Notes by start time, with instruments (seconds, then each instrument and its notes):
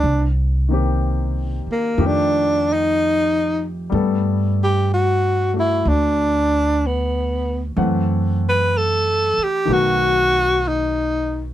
Already playing: tenor saxophone D4
0.04 upright bass C2
0.69 grand piano D#3 A#3 C4
0.74 grand piano G4
1.66 muted upright bass stroke
1.72 tenor saxophone A#3
1.98 upright bass F2, grand piano D#3 F3 A3 G4
2.06 tenor saxophone D4
2.73 tenor saxophone D#4
3.90 upright bass G2, grand piano G3 A3 B3
3.94 grand piano A4
4.64 tenor saxophone G4
4.94 tenor saxophone F#4
5.54 grand piano A3 F#4
5.60 tenor saxophone E4
5.85 upright bass D2, tenor saxophone D4
6.86 tenor saxophone B3
7.76 upright bass F#2, grand piano E3 A3 C4 F#5
8.49 tenor saxophone B4
8.77 tenor saxophone A4
9.38 muted upright bass stroke
9.44 tenor saxophone G4
9.65 upright bass B1, grand piano D#3 A3 B3
9.70 grand piano F#4, tenor saxophone F#4
10.68 tenor saxophone D#4